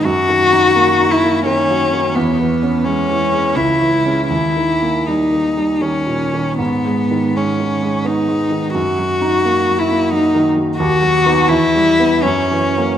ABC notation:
X:1
M:3/4
L:1/8
Q:1/4=85
K:D#phr
V:1 name="Cello"
F3 E C2 | B,2 C2 E2 | E2 D2 C2 | B,2 C2 D2 |
F3 E D z | [K:B] F2 E2 C2 |]
V:2 name="Grand piano" clef=bass
(3F,, D, D (3A, D A, (3D, F, D, | (3E,, E, C (3G, E, G, (3C,, E, [G,C] | (3D,, D, A, (3=G, D, G, (3D, A,, D, | (3G,, G, D, (3G, D, G, (3B, G, D, |
(3F,, F, D (3A, F, A, (3F, D, F, | [K:B] (3D,, F, [B,D] (3E,, =G, B, (3F,, E, [F,A,] |]